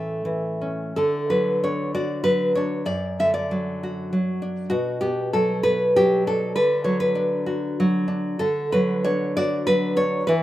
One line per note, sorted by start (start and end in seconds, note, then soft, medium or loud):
0.00 0.91 A2 medium
0.00 0.24 E3 soft
0.00 0.97 A3 soft
0.00 0.57 C#4 medium
0.00 0.56 A4 medium
0.25 0.97 E3 soft
0.61 0.97 C#4 soft
0.96 2.85 D3 medium
0.96 1.28 A4 medium
1.30 2.23 F#3 soft
1.30 1.61 B4 medium
1.64 2.56 D4 medium
1.64 1.93 C#5 medium
1.95 2.88 F#4 medium
1.95 2.23 D5 medium
2.24 2.88 F#3 medium
2.24 2.54 B4 loud
2.55 2.88 D4 medium
2.55 2.86 C#5 medium
2.85 4.67 F#2 medium
2.85 3.17 D5 medium
3.19 4.12 D3 medium
3.19 3.33 E5 loud
3.34 4.67 D5 medium
3.51 4.11 F#3 medium
3.83 4.69 F#4 medium
4.13 4.72 F#3 medium
4.42 4.72 D4 medium
4.70 6.54 B2 medium
4.70 5.01 F#4 medium
5.01 5.63 B3 medium
5.01 5.32 G4 medium
5.33 5.95 F#3 medium
5.33 5.63 A4 medium
5.63 6.57 B3 medium
5.63 5.94 B4 loud
5.96 6.56 F#3 medium
5.96 6.26 G4 loud
6.27 6.58 D4 medium
6.27 6.55 A4 medium
6.56 8.35 D3 medium
6.56 6.84 B4 medium
6.84 7.77 F#3 medium
6.84 7.00 C#5 medium
7.00 8.34 B4 loud
7.15 8.07 D4 medium
7.46 8.39 F#4 medium
7.80 8.41 F#3 medium
8.08 8.39 D4 medium
8.39 10.23 D3 medium
8.39 8.70 A4 loud
8.72 9.66 F#3 medium
8.72 9.03 B4 medium
9.04 9.95 D4 medium
9.04 9.35 C#5 loud
9.37 10.28 F#4 medium
9.37 9.65 D5 loud
9.67 10.27 F#3 medium
9.67 9.95 B4 loud
9.96 10.27 D4 medium
9.96 10.26 C#5 loud
10.27 10.43 E3 medium
10.27 10.43 B4 loud